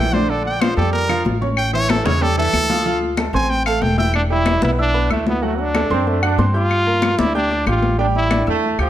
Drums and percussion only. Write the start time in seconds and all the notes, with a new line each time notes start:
0.13 high conga
0.29 high conga
0.45 high conga
0.61 high conga, claves
0.78 high conga
0.94 high conga
1.10 high conga, claves
1.26 high conga
1.42 high conga
1.57 high conga, claves
1.74 high conga
1.89 high conga, claves
2.06 high conga
2.21 high conga
2.37 high conga
2.53 high conga, claves
2.70 high conga
2.86 high conga
3.02 high conga
3.17 high conga, claves
3.34 high conga
3.50 high conga
3.66 high conga, claves
3.82 high conga
3.98 high conga
4.14 high conga, claves
4.30 high conga
4.46 high conga, claves
4.62 high conga
4.78 high conga
4.94 high conga
5.11 high conga, claves
5.27 high conga
5.43 high conga
5.59 high conga
5.75 high conga, claves
5.91 high conga
6.07 high conga
6.23 high conga, claves
6.39 high conga
6.71 high conga, claves
6.86 high conga
7.02 high conga, claves
7.19 high conga
7.35 high conga
7.51 high conga
7.66 high conga, claves
7.82 high conga
7.99 high conga
8.15 high conga
8.31 high conga, claves
8.47 high conga
8.63 high conga
8.79 high conga, claves